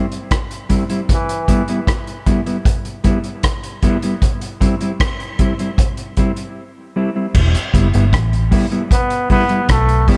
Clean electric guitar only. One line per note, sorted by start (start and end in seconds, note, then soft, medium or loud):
0.69 0.83 G3 medium
0.69 0.83 C4 medium
0.69 0.83 E4 medium
0.90 1.00 G3 medium
0.90 1.00 C4 soft
0.90 1.00 E4 medium
1.48 1.61 G3 medium
1.48 1.62 B3 medium
1.48 1.62 E4 medium
1.69 1.79 G3 medium
1.69 1.79 B3 medium
1.69 1.79 E4 medium
2.26 2.40 G3 medium
2.26 2.40 B3 medium
2.26 2.40 E4 medium
2.46 2.57 G3 soft
2.46 2.57 B3 medium
2.46 2.56 E4 medium
3.04 3.17 G3 medium
3.04 3.18 B3 medium
3.04 3.18 E4 medium
3.83 3.96 G3 medium
3.83 3.96 B3 medium
3.83 3.97 E4 loud
4.03 4.13 G3 medium
4.03 4.13 B3 medium
4.03 4.13 E4 medium
4.61 4.74 G3 medium
4.61 4.74 C4 medium
4.61 4.74 E4 medium
4.81 4.92 G3 soft
4.81 4.91 C4 soft
4.81 4.91 E4 medium
5.39 5.52 G3 medium
5.39 5.53 C4 medium
5.39 5.53 E4 medium
5.60 5.70 G3 soft
5.60 5.70 C4 medium
5.60 5.69 E4 medium
6.18 6.31 G3 medium
6.18 6.31 C4 medium
6.18 6.31 E4 medium
6.96 7.09 G3 medium
6.96 7.09 C4 medium
6.96 7.09 E4 medium
7.16 7.26 G3 soft
7.16 7.26 C4 soft
7.16 7.26 E4 medium
7.74 7.87 G3 medium
7.74 7.87 B3 medium
7.74 7.87 E4 medium
7.94 8.04 G3 medium
7.94 8.04 B3 medium
7.94 8.04 E4 medium
8.51 8.65 G3 medium
8.51 8.65 B3 medium
8.51 8.65 E4 loud
8.72 8.82 G3 soft
8.72 8.82 B3 medium
8.72 8.82 E4 medium
9.30 9.43 G3 medium
9.30 9.43 B3 medium
9.30 9.44 E4 medium
9.49 9.60 G3 soft
9.49 9.60 B3 medium
9.49 9.59 E4 medium
10.08 10.17 G3 medium
10.08 10.17 B3 loud
10.08 10.17 E4 medium